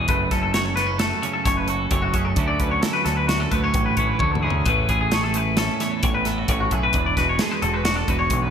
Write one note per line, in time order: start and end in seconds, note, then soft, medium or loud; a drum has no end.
0.00 0.12 E3 medium
0.00 0.55 F#4 medium
0.08 0.29 F#1 medium
0.08 1.90 F#2 medium
0.08 0.98 A3 medium
0.08 0.31 B4 medium
0.08 kick loud
0.08 closed hi-hat medium
0.31 1.11 F#1 medium
0.31 0.76 C#4 medium
0.31 0.42 A4 medium
0.31 kick medium
0.31 snare soft
0.31 closed hi-hat medium
0.43 0.54 A4 medium
0.54 2.35 F#3 medium
0.54 1.69 F#4 medium
0.54 0.65 C#5 medium
0.54 snare medium
0.54 closed hi-hat medium
0.65 0.75 A4 medium
0.76 0.86 B3 medium
0.76 0.99 B4 medium
0.76 snare soft
0.76 closed hi-hat medium
0.86 1.22 C#4 soft
0.99 1.91 A3 medium
0.99 1.22 A4 medium
0.99 snare loud
0.99 closed hi-hat medium
1.22 2.35 C#3 medium
1.22 2.14 C#4 medium
1.22 1.33 C#5 medium
1.22 closed hi-hat medium
1.33 1.45 A4 medium
1.45 1.86 F#1 medium
1.45 1.57 C#5 medium
1.45 kick loud
1.45 snare soft
1.45 closed hi-hat medium
1.57 1.68 B4 medium
1.68 2.35 F#4 medium
1.68 1.91 A4 medium
1.68 closed hi-hat medium
1.91 2.12 F#1 medium
1.91 2.35 F#2 medium
1.91 2.38 A3 medium
1.91 2.03 C#5 medium
1.91 kick medium
1.91 closed hi-hat medium
2.02 2.13 F#4 medium
2.13 2.34 F#1 medium
2.13 2.39 C#4 medium
2.13 2.25 G#4 medium
2.13 kick medium
2.13 closed hi-hat medium
2.25 2.48 A4 medium
2.36 2.57 D2 medium
2.36 4.20 D3 medium
2.36 2.82 F#3 medium
2.36 3.29 A3 medium
2.36 2.60 C#4 medium
2.36 2.83 E4 medium
2.36 kick loud
2.36 closed hi-hat medium
2.48 2.59 D5 medium
2.59 2.80 D2 medium
2.59 3.06 C#4 soft
2.59 2.71 B4 medium
2.59 kick medium
2.59 closed hi-hat medium
2.71 2.81 C#5 medium
2.81 4.63 F#3 medium
2.81 3.99 E4 soft
2.81 2.93 A4 medium
2.81 snare loud
2.81 closed hi-hat medium
2.93 3.04 B4 medium
3.05 3.46 D2 medium
3.05 3.53 C#4 medium
3.05 3.16 A4 medium
3.05 snare soft
3.05 closed hi-hat medium
3.17 3.28 B4 medium
3.28 4.21 A3 medium
3.28 3.40 F#4 medium
3.28 snare loud
3.28 closed hi-hat medium
3.40 3.51 A4 medium
3.51 3.72 D2 medium
3.51 4.21 A2 medium
3.51 3.64 B3 soft
3.51 3.63 B4 medium
3.51 kick medium
3.51 closed hi-hat medium
3.64 4.44 C#4 soft
3.64 3.85 C#5 medium
3.74 3.95 A1 loud
3.74 kick loud
3.74 closed hi-hat medium
3.86 3.97 B4 medium
3.97 4.17 A1 medium
3.97 4.70 E4 medium
3.97 4.08 C#5 medium
3.97 kick medium
3.97 closed hi-hat medium
4.08 4.19 B4 medium
4.19 4.40 D2 medium
4.19 4.64 D3 medium
4.19 4.64 A3 soft
4.19 4.31 C#5 medium
4.19 kick medium
4.19 high tom soft
4.31 4.42 A4 medium
4.35 mid tom medium
4.42 4.63 D2 medium
4.42 4.65 C#4 medium
4.42 4.65 G#4 medium
4.50 floor tom medium
4.65 4.86 A1 medium
4.65 6.48 A2 medium
4.65 5.11 A3 medium
4.65 5.58 C#4 medium
4.65 4.89 B4 medium
4.65 kick loud
4.65 closed hi-hat medium
4.70 4.90 E4 medium
4.70 5.13 G#4 medium
4.89 5.69 A1 medium
4.89 5.37 E4 medium
4.89 5.00 G#4 medium
4.89 kick medium
4.89 closed hi-hat medium
5.01 5.12 G#4 medium
5.12 6.92 A3 medium
5.12 6.26 G#4 soft
5.12 5.23 C#5 medium
5.12 snare loud
5.12 closed hi-hat medium
5.24 5.35 A4 medium
5.34 5.81 E4 medium
5.34 5.58 B4 medium
5.34 closed hi-hat medium
5.57 6.48 C#4 medium
5.57 5.81 A4 medium
5.57 snare loud
5.57 closed hi-hat medium
5.80 6.49 E2 medium
5.80 6.27 E4 soft
5.80 5.92 C#5 medium
5.80 snare soft
5.80 closed hi-hat medium
5.92 6.03 A4 medium
6.03 6.43 A1 medium
6.03 6.14 C#5 medium
6.03 kick loud
6.03 closed hi-hat medium
6.14 6.26 B4 medium
6.25 6.38 E4 medium
6.25 6.49 A4 medium
6.25 snare soft
6.25 closed hi-hat medium
6.38 6.95 F#4 soft
6.48 6.68 A1 medium
6.48 6.94 A2 medium
6.48 6.92 C#4 medium
6.48 6.60 C#5 medium
6.48 kick medium
6.48 closed hi-hat medium
6.60 6.72 F#4 medium
6.71 6.91 B1 medium
6.71 6.98 E4 medium
6.71 6.83 G#4 medium
6.71 kick medium
6.71 closed hi-hat medium
6.83 7.06 B4 medium
6.93 7.14 E1 medium
6.93 8.08 E2 medium
6.93 7.86 D4 medium
6.93 kick loud
6.93 closed hi-hat medium
7.06 7.17 D5 medium
7.17 7.37 E1 medium
7.17 7.63 F#4 medium
7.17 7.29 B4 medium
7.17 kick medium
7.17 snare soft
7.17 closed hi-hat medium
7.29 7.40 C#5 medium
7.39 8.50 G#3 medium
7.39 8.50 G#4 medium
7.39 7.51 A4 medium
7.39 snare loud
7.39 closed hi-hat medium
7.51 7.62 B4 medium
7.62 8.03 E1 medium
7.62 8.10 F#4 medium
7.62 7.74 A4 medium
7.62 closed hi-hat soft
7.74 7.84 B4 medium
7.84 8.50 D4 medium
7.84 7.96 F#4 medium
7.84 snare loud
7.84 closed hi-hat medium
7.96 8.08 A4 medium
8.08 8.28 E1 medium
8.08 8.50 E2 medium
8.08 8.50 F#4 medium
8.08 8.18 B4 medium
8.08 kick medium
8.08 closed hi-hat medium
8.19 8.42 C#5 medium
8.30 8.50 B1 loud
8.30 kick loud
8.30 closed hi-hat medium
8.42 8.50 B4 medium